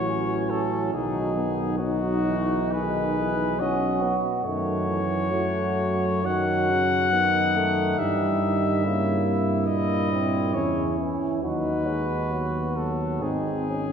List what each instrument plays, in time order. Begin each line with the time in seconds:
Already playing: tuba A1, trombone E3, euphonium F#3, flugelhorn F#4, cornet C#5
0.09 flugelhorn C#4
0.50 flugelhorn C#4, cornet A4
0.93 tuba B1, trombone D#3, euphonium F#3, flugelhorn D#4, cornet G#4
1.36 euphonium B3
1.78 trombone F#3, flugelhorn D#4, euphonium D#4, cornet F#4
2.27 trombone E3
2.72 trombone D#3, flugelhorn G#4, cornet B4
3.19 trombone E3
3.60 trombone F#3, euphonium C#4, flugelhorn F#4, cornet D#5
4.02 euphonium B3
4.44 tuba F#2, trombone D#3, euphonium A3, flugelhorn F#4, cornet C#5
4.87 trombone E3
5.30 trombone F#3, euphonium A3
6.25 trombone D#3, euphonium F#3, cornet F#5
6.70 trombone C#3
7.12 trombone D#3, euphonium B3, flugelhorn D#4
7.56 euphonium A3
7.99 tuba G2, trombone E3, euphonium G3, cornet E5
8.42 trombone D#3
8.84 trombone C#3, euphonium A#3, flugelhorn E4
9.27 trombone C3
9.66 trombone A#2, euphonium A#3, cornet D#5
10.12 euphonium C4
10.54 tuba E2, trombone C#3, euphonium C#4, cornet C#5
10.98 trombone E3
11.42 tuba D#2, trombone F#3, euphonium D#4, flugelhorn F#4, cornet B4
11.87 trombone G#3
12.31 trombone F#3, euphonium B3
12.75 trombone F#3, cornet A4
13.21 tuba G#1, trombone G#3, euphonium C4, flugelhorn D#4, cornet G#4
13.70 euphonium C#4